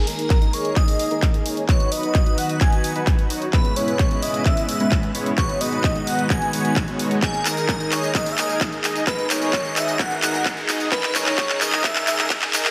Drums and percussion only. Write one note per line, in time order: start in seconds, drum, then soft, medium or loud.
0.07 open hi-hat loud
0.19 closed hi-hat soft
0.30 kick loud
0.30 clap soft
0.30 closed hi-hat medium
0.42 closed hi-hat soft
0.53 open hi-hat loud
0.65 closed hi-hat soft
0.76 kick loud
0.76 clap soft
0.76 closed hi-hat medium
0.88 open hi-hat medium
0.99 open hi-hat medium
1.11 closed hi-hat soft
1.23 kick loud
1.23 clap medium
1.23 closed hi-hat medium
1.34 closed hi-hat soft
1.46 open hi-hat loud
1.57 closed hi-hat soft
1.69 kick loud
1.69 clap medium
1.69 closed hi-hat medium
1.80 closed hi-hat soft
1.92 open hi-hat loud
2.03 closed hi-hat soft
2.15 kick loud
2.15 clap medium
2.15 closed hi-hat medium
2.26 closed hi-hat soft
2.38 open hi-hat loud
2.49 closed hi-hat soft
2.61 kick loud
2.61 clap medium
2.61 closed hi-hat medium
2.73 closed hi-hat soft
2.84 open hi-hat loud
2.96 closed hi-hat soft
3.07 kick loud
3.07 clap medium
3.07 closed hi-hat medium
3.19 closed hi-hat soft
3.30 open hi-hat loud
3.42 closed hi-hat soft
3.53 kick loud
3.53 clap medium
3.53 closed hi-hat medium
3.65 closed hi-hat soft
3.76 open hi-hat loud
3.88 closed hi-hat soft
3.99 kick loud
3.99 clap medium
3.99 closed hi-hat medium
4.11 closed hi-hat soft
4.22 open hi-hat loud
4.34 closed hi-hat soft
4.46 kick loud
4.46 clap medium
4.46 closed hi-hat medium
4.57 open hi-hat medium
4.69 open hi-hat loud
4.80 closed hi-hat soft
4.92 kick loud
4.92 clap medium
4.92 closed hi-hat medium
5.03 closed hi-hat soft
5.15 open hi-hat loud
5.26 closed hi-hat soft
5.38 kick loud
5.38 clap medium
5.38 closed hi-hat medium
5.49 closed hi-hat soft
5.61 open hi-hat loud
5.73 closed hi-hat soft
5.84 kick loud
5.84 clap medium
5.84 closed hi-hat medium
5.96 closed hi-hat soft
6.07 open hi-hat loud
6.19 closed hi-hat soft
6.30 kick loud
6.30 clap medium
6.30 closed hi-hat medium
6.42 closed hi-hat soft
6.53 open hi-hat loud
6.65 closed hi-hat soft
6.76 kick loud
6.76 clap medium
6.76 closed hi-hat medium
6.88 closed hi-hat soft
6.99 open hi-hat loud
7.11 closed hi-hat soft
7.23 kick loud
7.23 clap medium
7.23 closed hi-hat medium
7.23 tambourine soft
7.34 closed hi-hat soft
7.34 tambourine soft
7.46 clap medium
7.46 open hi-hat loud
7.46 tambourine medium
7.57 closed hi-hat soft
7.57 tambourine soft
7.69 kick loud
7.69 clap medium
7.69 closed hi-hat medium
7.69 tambourine soft
7.80 closed hi-hat soft
7.80 tambourine soft
7.92 clap medium
7.92 open hi-hat loud
7.92 tambourine medium
8.03 closed hi-hat soft
8.03 tambourine soft
8.15 kick loud
8.15 clap medium
8.15 closed hi-hat medium
8.15 tambourine soft
8.26 open hi-hat medium
8.26 tambourine soft
8.38 clap medium
8.38 open hi-hat loud
8.38 tambourine medium
8.49 closed hi-hat soft
8.49 tambourine soft
8.61 kick loud
8.61 clap medium
8.61 closed hi-hat medium
8.61 tambourine soft
8.73 closed hi-hat soft
8.73 tambourine soft
8.84 clap medium
8.84 open hi-hat loud
8.84 tambourine medium
8.96 closed hi-hat soft
8.96 tambourine soft
9.07 kick loud
9.07 clap medium
9.07 closed hi-hat medium
9.07 tambourine soft
9.19 closed hi-hat soft
9.19 tambourine soft
9.30 clap medium
9.30 open hi-hat loud
9.30 tambourine medium
9.42 closed hi-hat soft
9.42 tambourine soft
9.53 kick loud
9.53 clap medium
9.53 closed hi-hat medium
9.53 tambourine soft
9.65 closed hi-hat soft
9.65 tambourine soft
9.76 clap medium
9.76 open hi-hat loud
9.76 tambourine medium
9.88 closed hi-hat soft
9.88 tambourine soft
9.99 kick loud
9.99 clap medium
9.99 closed hi-hat medium
9.99 tambourine soft
10.11 closed hi-hat soft
10.11 tambourine soft
10.23 clap medium
10.23 open hi-hat loud
10.23 tambourine medium
10.34 closed hi-hat soft
10.34 tambourine soft
10.46 kick loud
10.46 clap medium
10.46 closed hi-hat medium
10.46 tambourine soft
10.57 closed hi-hat soft
10.57 tambourine soft
10.69 clap medium
10.69 open hi-hat loud
10.69 tambourine medium
10.80 closed hi-hat soft
10.80 tambourine soft
10.92 kick loud
10.92 clap loud
10.92 closed hi-hat medium
10.92 tambourine soft
11.03 clap medium
11.03 closed hi-hat soft
11.03 tambourine soft
11.15 clap medium
11.15 open hi-hat loud
11.15 tambourine medium
11.26 clap medium
11.26 closed hi-hat soft
11.26 tambourine soft
11.38 kick loud
11.38 clap medium
11.38 closed hi-hat medium
11.38 tambourine soft
11.49 clap medium
11.49 closed hi-hat soft
11.49 tambourine soft
11.61 clap medium
11.61 open hi-hat medium
11.61 tambourine medium
11.73 clap medium
11.73 closed hi-hat soft
11.73 tambourine soft
11.84 kick loud
11.84 clap loud
11.84 closed hi-hat medium
11.84 tambourine soft
11.96 clap medium
11.96 open hi-hat medium
11.96 tambourine soft
12.07 clap medium
12.07 open hi-hat loud
12.07 tambourine medium
12.19 clap medium
12.19 closed hi-hat soft
12.19 tambourine soft
12.30 kick loud
12.30 clap loud
12.30 closed hi-hat medium
12.30 tambourine soft
12.42 clap medium
12.42 closed hi-hat soft
12.42 tambourine soft
12.53 clap loud
12.53 open hi-hat loud
12.53 tambourine medium
12.65 clap medium
12.65 closed hi-hat soft
12.65 tambourine soft